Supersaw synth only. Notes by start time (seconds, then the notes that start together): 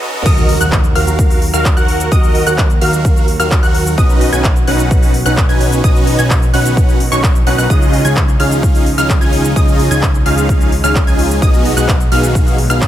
0.03 C#4 D#4 F#4 B4 D#5
0.26 F#4 A#4
0.61 F#4 A#4 F#5
0.96 F#4 A#4 F5
1.54 F#4 A#4 F5
1.77 F#4 A#4 F#5
2.12 F#4 D#5
2.47 F#4 A#4 F#5
2.82 F#4 A#4 F5
3.40 F#4 A#4 F5
3.63 F#4 A#4 F#5
3.98 C#4 D#4 F#4 B4 D#5
4.33 C#4 D#4 F#4 B4 G#5
4.68 C#4 D#4 F#4 B4 F#5
5.26 C#4 D#4 F#4 B4 F#5
5.49 C#4 D#4 F#4 B4 G#5
5.84 C#4 D#4 F#4 B4 D#5
6.19 C#4 D#4 F#4 B4 G#5
6.54 C#4 D#4 F#4 B4 F#5
7.12 C#4 D#4 F#4 B4 C#5
7.47 C#4 D#4 F#4 B4 F#5
7.58 C#4 D#4 F#4 B4 F#5
7.70 C#4 D#4 F4 G#4 D#5
8.05 C#4 D#4 F4 G#4 G#5
8.40 C#4 D#4 F4 G#4 F5
8.98 C#4 D#4 F4 G#4 F5
9.21 C#4 D#4 F4 G#4 G#5
9.56 C#4 D#4 F4 G#4 D#5
9.91 C#4 D#4 F4 G#4 G#5
10.26 C#4 D#4 F4 G#4 F5
10.84 C#4 D#4 F4 G#4 F5
11.07 C#4 D#4 F4 G#4 G#5
11.42 B3 D#4 F#4 G#4 D#5
11.77 B3 D#4 F#4 G#4 F#5
12.12 B3 D#4 F#4 G#4 F5
12.70 B3 D#4 F#4 G#4 F5